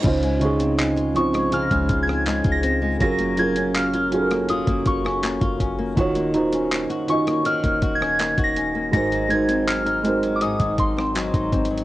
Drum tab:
CC |x-----------------------------------------------|------------------------------------------------|------------------------------------------------|------------------------------------------------|
HH |x--x--x--x--x--x--x--x--x--x--x-----x--x--x-----|x--x--x--x--x--x--x--x--x--x--x-----x--x--x-----|x--x--x--x--x--x--x--x--x--x--x-----x--x--x-----|x--x--x--x--x--x--x--x--x--x--x-----x--x--x-x-x-|
CP |------------x-----------------------x-----------|------------x-----------------------x-----------|------------x-----------------------x-----------|------------x-----------------------x-----------|
SD |---------------------r-----------r--------------|---------------------r-----------r--------------|---------------------r-----------r--------------|---------------------------------r--------------|
BD |o--------------------------o--o--------o--------|o--------------------------o--o--------o--o-----|o--------------------------o--o--------o--------|o--------------------------o--o--------o--o-----|